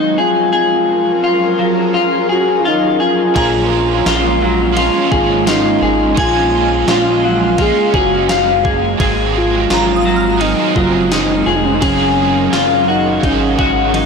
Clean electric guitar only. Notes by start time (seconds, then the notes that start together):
Already playing: D#4
0.18 G#4
0.53 G#4
1.24 F4
1.59 F#3
1.94 F4
2.29 G#4
2.65 F4
3.00 G#4
3.35 G#4
4.06 F4
4.42 F#3
4.77 F4
5.11 G#4
5.47 F4
5.82 G#4
6.18 G#4
6.89 F4
7.24 F#3
7.59 F4
7.94 G#4
8.30 F5
8.65 G#4
9.00 G#4
9.70 F4
10.05 F#3
10.40 D#4
10.76 F#3
11.12 D#4
11.46 G#4
11.82 G#4
12.53 F4
12.88 F#4
13.24 D#4
13.58 F#4
13.94 D#4